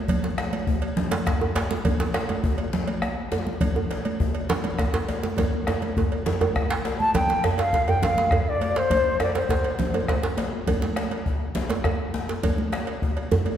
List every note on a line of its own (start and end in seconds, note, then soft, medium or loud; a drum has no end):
0.08 bombo low medium
0.08 cowbell medium
0.08 high conga soft
0.08 djembe bass medium
0.08 low conga medium
0.23 bombo rim soft
0.23 djembe slap medium
0.38 bombo rim loud
0.38 cowbell medium
0.38 djembe slap medium
0.38 high conga soft
0.53 cowbell medium
0.53 high conga medium
0.67 bombo low loud
0.67 djembe tone medium
0.67 djembe bass medium
0.82 cowbell medium
0.97 djembe slap medium
0.97 low conga medium
1.11 cowbell medium
1.11 djembe slap loud
1.11 high conga medium
1.26 bombo rim loud
1.26 bombo low loud
1.26 cowbell soft
1.26 djembe slap medium
1.26 djembe bass medium
1.41 djembe tone medium
1.55 cowbell medium
1.55 djembe slap medium
1.55 djembe slap loud
1.55 djembe tone medium
1.70 bombo rim soft
1.70 djembe slap medium
1.70 high conga medium
1.85 bombo low medium
1.85 cowbell medium
1.85 high conga soft
1.85 djembe tone medium
1.85 low conga medium
1.85 djembe bass medium
2.00 bombo rim soft
2.00 djembe slap medium
2.14 bombo rim loud
2.14 cowbell medium
2.14 djembe slap medium
2.14 high conga soft
2.29 cowbell soft
2.29 djembe tone medium
2.29 high conga medium
2.44 bombo low loud
2.44 djembe tone medium
2.44 djembe bass medium
2.58 cowbell soft
2.73 djembe slap medium
2.73 low conga medium
2.88 cowbell medium
2.88 high conga medium
3.02 bombo rim loud
3.02 cowbell soft
3.02 djembe bass medium
3.32 cowbell soft
3.32 djembe slap medium
3.32 djembe tone medium
3.46 bombo rim soft
3.46 high conga medium
3.61 bombo low loud
3.61 cowbell medium
3.61 high conga soft
3.61 low conga medium
3.61 djembe bass medium
3.75 bombo rim soft
3.75 djembe tone medium
3.91 cowbell soft
3.91 djembe slap medium
4.05 cowbell soft
4.05 high conga medium
4.20 bombo low loud
4.20 djembe tone medium
4.20 djembe bass medium
4.35 cowbell soft
4.49 djembe slap medium
4.49 djembe slap loud
4.49 low conga medium
4.64 cowbell soft
4.64 high conga medium
4.78 bombo rim medium
4.78 bombo low medium
4.78 cowbell soft
4.78 djembe slap medium
4.78 djembe bass medium
4.94 djembe slap loud
5.08 cowbell soft
5.08 djembe slap medium
5.08 djembe tone medium
5.23 bombo rim soft
5.23 djembe slap medium
5.23 high conga medium
5.37 bombo low medium
5.37 cowbell medium
5.37 high conga soft
5.37 djembe tone medium
5.37 djembe bass medium
5.37 low conga medium
5.53 bombo rim soft
5.53 high conga soft
5.67 bombo rim medium
5.67 cowbell soft
5.67 djembe slap medium
5.67 djembe tone medium
5.82 cowbell soft
5.82 high conga medium
5.97 bombo low loud
5.97 djembe tone medium
5.97 djembe bass medium
6.12 cowbell soft
6.12 djembe slap soft
6.26 bombo rim soft
6.26 djembe slap medium
6.26 djembe tone loud
6.26 low conga medium
6.41 bombo rim soft
6.41 cowbell soft
6.41 djembe tone loud
6.41 high conga medium
6.55 bombo rim loud
6.55 bombo low medium
6.55 cowbell soft
6.55 djembe slap soft
6.55 djembe bass medium
6.70 djembe slap loud
6.70 high conga soft
6.85 cowbell soft
6.85 djembe slap medium
6.85 djembe tone medium
7.00 7.13 A5 medium
7.00 high conga medium
7.14 7.42 G5 medium
7.14 bombo low medium
7.14 cowbell medium
7.14 djembe slap medium
7.14 low conga medium
7.14 djembe bass medium
7.29 djembe slap medium
7.29 high conga medium
7.44 bombo rim medium
7.44 cowbell soft
7.44 djembe slap medium
7.44 djembe bass medium
7.58 7.90 F5 medium
7.58 cowbell soft
7.58 djembe slap medium
7.58 high conga soft
7.73 bombo low loud
7.73 djembe slap medium
7.73 djembe tone medium
7.87 8.05 G5 medium
7.87 bombo rim soft
7.87 cowbell soft
7.87 djembe bass medium
8.02 8.50 F5 medium
8.02 djembe slap medium
8.02 djembe slap loud
8.02 low conga medium
8.02 djembe bass medium
8.17 bombo rim soft
8.17 djembe slap medium
8.17 high conga medium
8.31 bombo rim medium
8.31 bombo low medium
8.31 cowbell medium
8.31 djembe bass medium
8.49 8.79 D5 medium
8.61 cowbell medium
8.61 djembe tone medium
8.76 9.21 C5 medium
8.76 djembe slap soft
8.76 djembe slap medium
8.90 bombo low medium
8.90 cowbell medium
8.90 djembe bass medium
8.90 low conga medium
9.20 9.35 D5 medium
9.20 bombo rim medium
9.20 cowbell soft
9.20 djembe slap medium
9.20 djembe tone medium
9.35 10.20 C5 medium
9.35 cowbell soft
9.35 djembe slap medium
9.35 high conga soft
9.49 bombo low loud
9.49 djembe slap medium
9.49 djembe tone medium
9.64 bombo rim soft
9.64 cowbell soft
9.79 djembe slap medium
9.79 djembe bass medium
9.79 low conga medium
9.94 bombo rim soft
9.94 cowbell medium
9.94 high conga medium
9.94 djembe tone medium
10.08 bombo rim medium
10.08 bombo low medium
10.08 cowbell soft
10.08 djembe slap medium
10.23 djembe slap medium
10.37 cowbell medium
10.37 djembe slap medium
10.37 djembe tone medium
10.53 djembe slap soft
10.67 bombo low medium
10.67 cowbell medium
10.67 djembe tone medium
10.67 djembe bass medium
10.67 low conga medium
10.82 djembe slap medium
10.82 high conga medium
10.96 bombo rim medium
10.96 cowbell medium
10.96 djembe slap medium
11.11 cowbell soft
11.11 high conga soft
11.26 bombo low medium
11.26 djembe tone medium
11.40 bombo rim soft
11.55 djembe slap medium
11.55 low conga medium
11.55 djembe bass medium
11.70 bombo rim soft
11.70 cowbell soft
11.70 djembe slap medium
11.70 high conga medium
11.84 bombo rim loud
11.84 bombo low loud
11.84 cowbell soft
11.84 djembe tone medium
12.14 djembe slap medium
12.14 djembe tone medium
12.29 djembe slap soft
12.29 djembe slap medium
12.43 bombo low medium
12.43 cowbell medium
12.43 djembe tone medium
12.43 low conga medium
12.43 djembe bass medium
12.58 bombo rim soft
12.58 djembe slap soft
12.58 high conga medium
12.72 bombo rim medium
12.72 cowbell medium
12.72 djembe slap medium
12.72 high conga soft
12.87 cowbell medium
12.87 djembe slap soft
13.02 bombo low loud
13.02 high conga soft
13.02 djembe tone medium
13.17 bombo rim soft
13.17 cowbell soft
13.31 djembe slap medium
13.31 low conga medium
13.31 djembe bass medium
13.46 cowbell soft
13.46 high conga medium